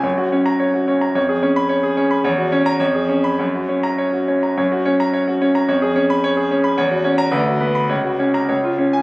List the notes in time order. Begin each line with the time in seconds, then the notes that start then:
0.03 F#2 C#5
0.18 F#4
0.32 C#4 C#5
0.46 A#5
0.59 C#5
0.74 F#4
0.88 C#4 C#5
1.01 A#5
1.15 F2 C#5
1.29 G#4
1.43 C#4 C#5
1.56 B5
1.69 C#5
1.83 G#4
1.97 C#4 C#5
2.11 B5
2.24 E2 C#5
2.38 F#4
2.52 C#4 C#5
2.66 A#5
2.80 F2 C#5
2.95 G#4
3.09 C#4 C#5
3.24 B5
3.39 F#2 C#5
3.55 F#4
3.69 C#4 C#5
3.83 A#5
3.98 C#5
4.13 F#4
4.28 C#4 C#5
4.43 A#5
4.57 F#2 C#5
4.72 F#4
4.85 C#4 C#5
5.00 A#5
5.13 C#5
5.28 F#4
5.41 C#4 C#5
5.55 A#5
5.68 F2 C#5
5.82 G#4
5.96 C#4 C#5
6.10 B5
6.24 C#5
6.37 G#4
6.51 C#4 C#5
6.64 B5
6.78 E2 C#5
6.91 F#4
7.04 C#4 C#5
7.18 A#5
7.31 D2 B4
7.46 F#4
7.60 B3 B4
7.75 B5
7.89 C#2 C#5
8.04 F#4
8.19 C#4 C#5
8.34 A#5
8.49 C#2 C#5
8.64 F4
8.78 C#4 C#5
8.93 G#5